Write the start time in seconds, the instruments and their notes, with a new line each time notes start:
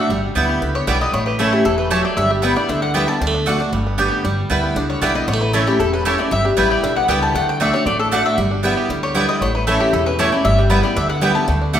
Already playing: five-string banjo D4
0.00 steel-string acoustic guitar D4
0.09 upright bass G1, five-string banjo G3, steel-string acoustic guitar G3
0.35 upright bass D2, steel-string acoustic guitar G3 B3 E4, mandolin B3 E4 B4 G5, five-string banjo D4
0.49 five-string banjo G4
0.62 upright bass C#2, steel-string acoustic guitar D3, five-string banjo B3
0.75 five-string banjo G4, mandolin C#5
0.87 upright bass B1, steel-string acoustic guitar G3 B3 E4, five-string banjo G3, mandolin B3 E4 B4 D5 G5
1.01 five-string banjo D4, mandolin D#5
1.13 upright bass A1, steel-string acoustic guitar A2, five-string banjo E4, mandolin C#5
1.26 five-string banjo G4, mandolin B4
1.39 steel-string acoustic guitar E3 A3 C#4 E4, mandolin A3 E4 A4 C#5 A5, five-string banjo A3
1.53 five-string banjo E4, mandolin G4
1.65 upright bass E1, steel-string acoustic guitar E3, five-string banjo E3, mandolin A4
1.78 five-string banjo A3, mandolin B4
1.90 steel-string acoustic guitar F#3, mandolin A3 E4 C#5 A5, five-string banjo G4
2.05 five-string banjo A3, mandolin D5
2.17 upright bass G1, steel-string acoustic guitar G3, five-string banjo D4, mandolin E5
2.30 mandolin G4, five-string banjo G4
2.42 steel-string acoustic guitar G3 B3 E4, five-string banjo G3, mandolin B3 E4 B4 G5
2.56 steel-string acoustic guitar B3 E4, five-string banjo D4, mandolin D5
2.69 upright bass D2, steel-string acoustic guitar D3, five-string banjo D3, mandolin E5
2.82 five-string banjo G3, mandolin F#5
2.94 steel-string acoustic guitar G3 B3 E4, mandolin B3 E4 B4 G5, five-string banjo G4
3.08 five-string banjo G3, steel-string acoustic guitar B3 E4, mandolin A5
3.21 upright bass D2, steel-string acoustic guitar D3, five-string banjo G3
3.27 five-string banjo A3
3.34 five-string banjo D4
3.46 steel-string acoustic guitar D3 A3 D4 F#4, mandolin A3 F#4 D5 F#5, five-string banjo D4
3.60 five-string banjo D4, steel-string acoustic guitar D4 F#4
3.72 upright bass G1, steel-string acoustic guitar G2, five-string banjo G3
3.87 five-string banjo B3
3.98 steel-string acoustic guitar D3 G3 B3 G4, mandolin B3 G4 D5 G5, five-string banjo D4
4.12 five-string banjo G4
4.24 upright bass G1, five-string banjo G3, steel-string acoustic guitar G3
4.50 upright bass D2, steel-string acoustic guitar G3 B3 E4, five-string banjo G3, mandolin B3 E4 B4 G5
4.63 five-string banjo B3
4.76 upright bass C#2, steel-string acoustic guitar D3, five-string banjo D4
4.89 five-string banjo G3, mandolin C#5
5.01 upright bass B1, steel-string acoustic guitar G3 B3 E4, mandolin B3 E4 B4 D5 G5, five-string banjo B3
5.15 steel-string acoustic guitar B3 E4, five-string banjo D4, mandolin D#5
5.28 upright bass A1, steel-string acoustic guitar A2, five-string banjo G3, mandolin C#5
5.33 five-string banjo A3
5.41 five-string banjo E4, mandolin B4
5.53 steel-string acoustic guitar E3 A3 C#4 E4, mandolin A3 E4 A4 C#5 A5, five-string banjo A3
5.67 steel-string acoustic guitar C#4 E4, five-string banjo G4, mandolin G4
5.79 upright bass E1, steel-string acoustic guitar E2, five-string banjo E4, mandolin A4
5.93 five-string banjo C#4, mandolin B4
6.05 steel-string acoustic guitar E3 A3 C#4 E4, mandolin A3 E4 C#5 A5, five-string banjo G4
6.18 five-string banjo A3, steel-string acoustic guitar C#4 E4, mandolin D5
6.31 upright bass G1, steel-string acoustic guitar G3, five-string banjo G3, mandolin E5
6.45 five-string banjo D4, mandolin G4
6.57 upright bass A1, steel-string acoustic guitar G3 B3 E4, five-string banjo G3, mandolin B3 E4 B4 G5
6.71 five-string banjo G4, mandolin D5
6.83 upright bass B1, steel-string acoustic guitar D3, five-string banjo D4, mandolin E5
6.96 five-string banjo B3, mandolin F#5
7.08 upright bass C#2, steel-string acoustic guitar G3 B3 E4, mandolin B3 E4 B4 G5, five-string banjo G4
7.22 five-string banjo G3, mandolin A5
7.34 upright bass D2, steel-string acoustic guitar D3, five-string banjo A3, mandolin F#5
7.49 mandolin G5
7.60 steel-string acoustic guitar D3 A3 D4 F#4, mandolin A3 F#4 D5 E5 F#5, five-string banjo D4
7.73 five-string banjo D4, steel-string acoustic guitar D4 F#4, mandolin C#5
7.86 upright bass A1, steel-string acoustic guitar A2, five-string banjo A3, mandolin D5
7.99 five-string banjo D4, mandolin A4
8.12 steel-string acoustic guitar D3 A3 D4 F#4, mandolin A3 F#4 D5 F#5, five-string banjo D4
8.25 five-string banjo A3, mandolin E5
8.38 upright bass G1, five-string banjo G3, steel-string acoustic guitar G3
8.51 five-string banjo D4
8.63 steel-string acoustic guitar G3 B3 E4, five-string banjo G3, mandolin B3 E4 B4 G5
8.77 five-string banjo G4
8.89 upright bass D2, steel-string acoustic guitar D3, five-string banjo G3
9.03 five-string banjo G4, mandolin C#5
9.15 steel-string acoustic guitar G3 B3 E4, mandolin B3 E4 B4 D5 G5, five-string banjo D4
9.29 five-string banjo G3, mandolin D#5
9.41 upright bass A1, steel-string acoustic guitar A2, five-string banjo A3, mandolin C#5
9.55 five-string banjo E4, mandolin B4
9.67 steel-string acoustic guitar E3 A3 C#4 E4, mandolin A3 E4 A4 C#5 A5, five-string banjo A3
9.80 mandolin G4, five-string banjo G4
9.93 upright bass E1, steel-string acoustic guitar E2, five-string banjo E4, mandolin A4
10.06 five-string banjo C#4, mandolin B4
10.19 steel-string acoustic guitar E3 A3 C#4 E4, mandolin A3 E4 C#5 A5, five-string banjo G4
10.32 five-string banjo A3, steel-string acoustic guitar C#4 E4, mandolin D5
10.45 upright bass G1, steel-string acoustic guitar G3, five-string banjo G3, mandolin E5
10.58 five-string banjo D4, mandolin G4
10.70 steel-string acoustic guitar G3 B3 E4, five-string banjo G3, mandolin B3 E4 B4 G5
10.83 steel-string acoustic guitar B3 E4, five-string banjo G4, mandolin D5
10.96 upright bass D2, steel-string acoustic guitar D3, five-string banjo D4, mandolin E5
11.09 five-string banjo B3, mandolin F#5
11.21 steel-string acoustic guitar G3 B3 E4, mandolin B3 E4 B4 G5, five-string banjo G4
11.35 five-string banjo G3, steel-string acoustic guitar B3 E4, mandolin A5
11.48 upright bass D2, steel-string acoustic guitar D3, five-string banjo A3
11.62 five-string banjo D4
11.73 steel-string acoustic guitar D3 A3 D4 F#4, mandolin A3 F#4 D5 F#5, five-string banjo A3